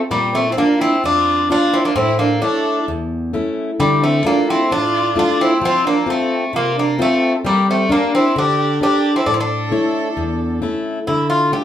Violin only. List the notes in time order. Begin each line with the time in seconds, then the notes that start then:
0.11 A#3
0.34 C4
0.49 E4
0.56 D4
0.79 E4
1.03 F4
1.50 F4
1.74 E4
1.86 D4
1.98 E4
2.21 D4
2.44 A4
3.81 D4
4.03 C4
4.26 D4
4.49 E4
4.73 F4
5.18 F4
5.41 E4
5.64 F4
5.87 D4
6.09 C4
6.54 F4
6.78 D4
7.00 C4
7.45 A#3
7.69 C4
7.93 D4
8.16 E4
8.38 G4
8.83 G4
9.16 E4
9.27 A4
9.33 E4
9.40 A4